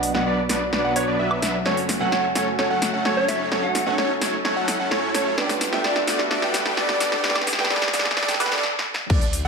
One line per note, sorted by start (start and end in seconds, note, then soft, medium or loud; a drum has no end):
0.00 0.12 B1 loud
0.00 0.12 B2 medium
0.00 5.34 F#3 medium
0.00 0.12 B3 medium
0.00 1.62 B3 medium
0.00 0.12 D4 medium
0.00 1.62 D4 medium
0.00 0.12 F#4 medium
0.00 0.12 D5 medium
0.00 open hi-hat loud
0.00 riser medium
0.14 0.24 B1 loud
0.14 0.23 B2 medium
0.14 0.23 F#3 medium
0.14 0.23 B3 medium
0.14 0.23 D4 medium
0.14 0.23 F#4 medium
0.14 0.23 B4 medium
0.14 0.23 D5 loud
0.14 0.23 F#5 loud
0.14 snare medium
0.26 0.47 B1 loud
0.26 0.40 F#3 medium
0.26 0.40 B3 medium
0.26 0.40 D4 medium
0.26 0.40 B4 medium
0.26 0.40 D5 medium
0.26 0.40 D5 loud
0.49 0.70 B1 loud
0.49 0.63 F#3 medium
0.49 0.63 B3 medium
0.49 0.63 D4 medium
0.49 0.63 B4 medium
0.49 0.63 D5 medium
0.49 snare medium
0.49 open hi-hat loud
0.73 0.82 B1 loud
0.73 0.83 F#3 medium
0.73 0.83 B3 medium
0.73 0.83 D4 medium
0.73 0.83 B4 medium
0.73 0.83 D5 medium
0.73 snare medium
0.84 0.94 B1 medium
0.84 0.94 F#3 medium
0.84 0.94 B3 medium
0.84 0.94 D4 medium
0.84 0.94 B4 medium
0.84 0.94 F#5 medium
0.96 1.05 B1 medium
0.96 1.05 F#3 loud
0.96 1.05 B3 medium
0.96 1.05 D4 medium
0.96 1.05 B4 medium
0.96 1.05 C#5 loud
0.96 open hi-hat loud
1.08 1.17 B1 medium
1.08 1.17 F#3 medium
1.08 1.17 B3 medium
1.08 1.17 D4 medium
1.08 1.17 B4 medium
1.08 1.17 D5 loud
1.19 1.40 B1 loud
1.19 1.39 F#3 medium
1.19 1.39 B3 medium
1.19 1.39 D4 medium
1.19 1.39 B4 medium
1.19 1.39 E5 loud
1.31 high woodblock medium
1.42 1.63 B1 loud
1.42 1.56 F#3 medium
1.42 1.56 B3 medium
1.42 1.56 D4 medium
1.42 1.56 B4 medium
1.42 1.56 E5 medium
1.42 snare medium
1.42 open hi-hat loud
1.65 1.98 F#1 medium
1.65 1.79 F#3 medium
1.65 1.98 A3 medium
1.65 8.59 A3 medium
1.65 1.79 A3 medium
1.65 1.98 C#4 medium
1.65 5.34 C#4 medium
1.65 1.79 C#4 medium
1.65 1.98 F#4 medium
1.65 1.79 A4 medium
1.65 1.79 C#5 medium
1.65 1.79 C#5 loud
1.65 1.98 C#5 loud
1.65 snare medium
1.77 open hi-hat medium
1.89 snare medium
1.89 open hi-hat loud
1.99 2.10 F#1 loud
1.99 2.09 F#3 medium
1.99 3.48 A3 loud
1.99 2.09 A3 medium
1.99 3.49 C#4 medium
1.99 2.09 C#4 medium
1.99 3.49 F#4 medium
1.99 2.09 A4 medium
1.99 2.09 F#5 loud
1.99 3.50 F#5 loud
2.12 2.33 F#1 loud
2.12 2.26 F#3 medium
2.12 2.26 A3 medium
2.12 2.26 C#4 medium
2.12 2.26 A4 medium
2.12 2.26 C#5 medium
2.12 2.26 C#5 loud
2.12 snare medium
2.35 2.56 F#1 loud
2.35 2.49 F#3 medium
2.35 2.49 A3 medium
2.35 2.49 C#4 medium
2.35 2.49 A4 medium
2.35 2.49 C#5 medium
2.35 snare medium
2.35 open hi-hat loud
2.59 2.68 F#1 loud
2.59 2.69 F#3 medium
2.59 2.69 A3 medium
2.59 2.69 C#4 medium
2.59 2.69 A4 medium
2.59 2.69 C#5 medium
2.59 snare medium
2.70 2.91 F#1 loud
2.70 2.90 F#3 medium
2.70 2.90 A3 medium
2.70 2.90 C#4 medium
2.70 2.90 A4 medium
2.70 2.90 F#5 medium
2.82 snare medium
2.82 open hi-hat loud
2.94 3.03 F#1 loud
2.94 3.03 F#3 medium
2.94 3.03 A3 medium
2.94 3.03 C#4 medium
2.94 3.03 A4 medium
2.94 3.03 F#5 medium
3.05 3.26 F#1 loud
3.05 3.25 F#3 medium
3.05 3.25 A3 medium
3.05 3.25 C#4 medium
3.05 3.25 A4 medium
3.05 3.25 C#5 medium
3.05 3.25 C#5 loud
3.05 snare medium
3.17 3.26 C#5 medium
3.28 3.49 F#1 loud
3.28 3.49 F#3 medium
3.28 3.49 A3 medium
3.28 3.49 C#4 medium
3.28 3.49 A4 medium
3.28 3.49 C#5 medium
3.28 3.49 C#5 loud
3.28 3.40 E5 medium
3.28 snare medium
3.28 open hi-hat loud
3.51 3.84 F#1 medium
3.51 3.65 F#3 medium
3.51 3.84 A3 medium
3.51 3.65 A3 medium
3.51 3.84 C#4 medium
3.51 3.65 C#4 medium
3.51 3.84 F#4 medium
3.51 3.65 A4 medium
3.51 3.65 C#5 medium
3.51 3.65 C#5 loud
3.51 3.84 C#5 loud
3.51 snare medium
3.63 3.98 F#5 medium
3.75 snare medium
3.75 open hi-hat loud
3.86 3.96 F#1 loud
3.86 3.95 F#3 medium
3.86 3.95 A3 medium
3.86 3.95 C#4 medium
3.86 3.95 F#4 medium
3.86 3.95 A4 medium
3.86 3.95 C#5 loud
3.86 3.95 F#5 loud
3.98 4.19 F#1 loud
3.98 4.12 F#3 medium
3.98 4.12 A3 medium
3.98 4.12 C#4 medium
3.98 4.12 A4 medium
3.98 4.12 C#5 loud
3.98 snare medium
4.21 4.42 F#1 loud
4.21 4.35 F#3 medium
4.21 4.35 A3 medium
4.21 4.35 C#4 medium
4.21 4.35 A4 medium
4.21 4.35 C#5 medium
4.21 snare medium
4.21 open hi-hat loud
4.45 4.54 F#1 loud
4.45 4.55 F#3 medium
4.45 4.55 A3 medium
4.45 4.55 C#4 medium
4.45 4.55 A4 medium
4.45 4.55 C#5 medium
4.45 snare medium
4.56 4.77 F#1 medium
4.56 4.76 F#3 medium
4.56 4.76 A3 medium
4.56 4.76 C#4 medium
4.56 4.76 A4 medium
4.56 4.76 F#5 medium
4.68 snare medium
4.68 open hi-hat loud
4.80 4.89 F#1 medium
4.80 4.90 F#3 medium
4.80 4.90 A3 medium
4.80 4.90 C#4 medium
4.80 4.90 A4 medium
4.80 4.90 F#5 medium
4.91 5.12 F#2 medium
4.91 5.11 F#3 medium
4.91 5.11 A3 medium
4.91 5.11 C#4 medium
4.91 5.11 A4 medium
4.91 5.11 C#5 loud
4.91 5.11 C#5 medium
4.91 snare medium
5.14 5.35 F#2 loud
5.14 5.35 F#3 medium
5.14 5.35 A3 medium
5.14 5.35 C#4 medium
5.14 5.35 A4 medium
5.14 5.35 C#5 medium
5.14 snare medium
5.14 open hi-hat loud
5.37 5.70 G1 loud
5.37 5.70 G2 medium
5.37 8.60 G3 medium
5.37 5.51 G3 medium
5.37 5.70 A3 medium
5.37 5.51 B3 medium
5.37 8.60 B3 medium
5.37 5.51 D4 medium
5.37 5.70 D4 medium
5.37 5.70 G4 medium
5.37 5.51 A4 medium
5.37 5.70 B4 loud
5.37 5.51 D5 loud
5.37 5.51 D5 medium
5.37 snare medium
5.49 snare medium
5.49 open hi-hat medium
5.61 snare medium
5.61 open hi-hat loud
5.71 5.82 G1 loud
5.71 7.20 G2 loud
5.71 5.81 G3 medium
5.71 7.21 A3 medium
5.71 5.82 B3 medium
5.71 5.82 D4 medium
5.71 7.21 D4 medium
5.71 7.21 G4 medium
5.71 5.81 A4 medium
5.71 7.22 E5 loud
5.71 5.82 G5 loud
5.71 snare medium
5.84 6.05 G1 loud
5.84 5.98 G3 medium
5.84 5.98 B3 medium
5.84 5.98 D4 medium
5.84 5.98 A4 medium
5.84 5.98 D5 medium
5.84 5.98 D5 loud
5.84 snare medium
5.96 snare medium
6.07 6.28 G1 loud
6.07 6.21 G3 medium
6.07 6.21 B3 medium
6.07 6.21 D4 medium
6.07 6.21 A4 medium
6.07 6.21 D5 medium
6.07 snare medium
6.07 open hi-hat loud
6.19 snare medium
6.31 6.40 G1 loud
6.31 6.41 G3 medium
6.31 6.41 B3 medium
6.31 6.41 D4 medium
6.31 6.41 A4 medium
6.31 6.41 D5 medium
6.31 snare medium
6.42 6.63 G1 loud
6.42 6.62 G3 medium
6.42 6.62 B3 medium
6.42 6.62 D4 medium
6.42 6.62 A4 medium
6.42 6.62 G5 medium
6.42 snare medium
6.54 snare loud
6.54 open hi-hat loud
6.66 6.75 G1 loud
6.66 6.76 G3 medium
6.66 6.76 B3 medium
6.66 6.76 D4 medium
6.66 6.76 A4 medium
6.66 6.76 G5 medium
6.66 snare medium
6.77 6.98 G1 medium
6.77 6.97 G3 medium
6.77 6.97 B3 medium
6.77 6.97 D4 medium
6.77 6.97 A4 medium
6.77 6.97 D5 loud
6.77 snare loud
6.89 snare medium
7.00 7.21 G1 loud
7.00 7.21 G3 medium
7.00 7.21 B3 medium
7.00 7.21 D4 medium
7.00 7.21 A4 medium
7.00 7.21 D5 medium
7.00 snare loud
7.00 open hi-hat loud
7.12 snare medium
7.23 7.56 G1 loud
7.23 7.56 G2 medium
7.23 7.37 G3 medium
7.23 7.56 A3 medium
7.23 7.37 B3 medium
7.23 7.37 D4 medium
7.23 7.56 D4 medium
7.23 7.56 G4 medium
7.23 7.37 A4 medium
7.23 7.56 B4 loud
7.23 7.37 D5 loud
7.23 snare loud
7.30 snare medium
7.35 snare medium
7.35 high woodblock medium
7.41 snare medium
7.47 snare loud
7.47 open hi-hat loud
7.53 snare medium
7.58 7.68 G1 loud
7.58 7.67 G2 loud
7.58 7.68 G3 medium
7.58 7.67 A3 medium
7.58 7.68 B3 medium
7.58 7.68 D4 medium
7.58 7.67 D4 medium
7.58 7.67 G4 medium
7.58 7.68 A4 medium
7.58 7.67 B4 loud
7.58 7.68 G5 loud
7.58 snare loud
7.64 snare medium
7.70 7.91 G1 loud
7.70 7.84 G3 medium
7.70 7.84 B3 medium
7.70 7.84 D4 medium
7.70 7.84 A4 medium
7.70 7.84 D5 loud
7.70 snare loud
7.76 snare medium
7.82 snare loud
7.88 snare medium
7.94 8.15 G1 loud
7.94 8.07 G3 medium
7.94 8.07 B3 medium
7.94 8.07 D4 medium
7.94 8.07 A4 medium
7.94 8.07 D5 medium
7.94 snare loud
7.94 open hi-hat loud
7.99 snare loud
8.05 snare medium
8.11 snare medium
8.17 8.26 G1 loud
8.17 8.27 G3 medium
8.17 8.27 B3 medium
8.17 8.27 D4 medium
8.17 8.27 A4 medium
8.17 8.27 D5 medium
8.17 snare loud
8.23 snare medium
8.28 8.38 G1 loud
8.28 8.38 G3 medium
8.28 8.38 B3 medium
8.28 8.38 D4 medium
8.28 8.38 A4 medium
8.28 8.38 G5 medium
8.28 snare medium
8.28 open hi-hat medium
8.34 snare medium
8.39 8.49 G1 loud
8.39 8.63 G2 medium
8.39 8.49 G3 loud
8.39 8.63 A3 medium
8.39 8.49 B3 medium
8.39 8.49 D4 loud
8.39 8.63 D4 medium
8.39 8.64 G4 medium
8.39 8.49 A4 medium
8.39 8.49 B4 loud
8.39 8.64 D5 loud
8.39 snare loud
8.39 open hi-hat loud
8.39 high woodblock medium
8.46 snare loud
8.52 8.61 G1 medium
8.52 8.62 G3 medium
8.52 8.62 B3 medium
8.52 8.62 D4 medium
8.52 8.62 A4 medium
8.52 8.62 D5 loud
8.52 snare loud
8.58 snare loud
8.63 snare medium
8.79 snare medium
8.94 snare medium
9.10 9.42 D2 loud
9.10 9.23 E3 medium
9.10 9.23 A3 medium
9.10 9.23 D4 medium
9.10 9.23 A4 medium
9.10 9.23 D5 loud
9.10 kick loud
9.10 crash loud
9.10 sub drop medium
9.21 open hi-hat medium
9.33 open hi-hat loud
9.45 9.48 D2 loud